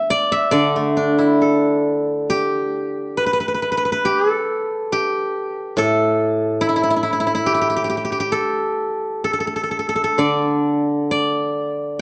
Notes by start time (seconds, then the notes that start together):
Already playing: A3 B3 D4 A4 E5
0.10 D5
0.32 E5
0.51 D3 D5
0.76 A3
0.97 D4
1.18 E4
1.42 A4
2.30 G4
3.17 B4
3.26 B4
3.33 B4
3.40 B4
3.48 B4
3.54 B4
3.62 B4
3.72 B4
3.77 B4
3.85 B4
3.92 B4
4.05 G4
4.30 A4
4.92 G4
5.77 A2 A4
6.61 E4
6.69 E4
6.76 E4
6.83 E4
6.90 E4
6.96 E4
7.03 E4
7.13 E4
7.20 E4
7.27 E4
7.35 E4
7.46 G4
7.54 G4
7.61 G4
7.70 G4
7.76 G4
7.84 G4
7.90 G4
7.97 G4
8.05 G4
8.12 G4
8.20 G4
8.32 A4
9.24 A4
9.33 A4
9.40 A4
9.47 A4
9.56 A4
9.63 A4
9.71 A4
9.79 A4
9.89 A4
9.96 A4
10.04 A4
10.18 D3 D5
11.11 D5